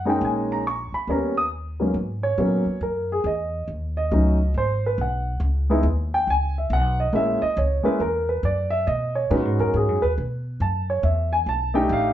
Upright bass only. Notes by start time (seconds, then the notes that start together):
Already playing: F#2
0.21 A#1
0.92 muted upright bass stroke
1.07 D#2
1.94 G#2
2.38 A#2
2.66 muted upright bass stroke
2.81 F#2
3.24 E2
3.68 D#2
4.11 C#2
4.54 G#1
4.98 B1
5.40 C#2
5.83 D#2
6.27 C#2
6.70 B1
7.13 A#1
7.42 muted upright bass stroke
7.57 C#2
7.85 muted upright bass stroke
8.00 E2
8.43 F#2
8.87 B2
9.31 A#2
9.45 G#2
9.59 F#2
9.74 G#2
9.89 F#2
10.03 D#2
10.18 B2
10.60 F#2
11.03 E2
11.46 B1
11.89 A1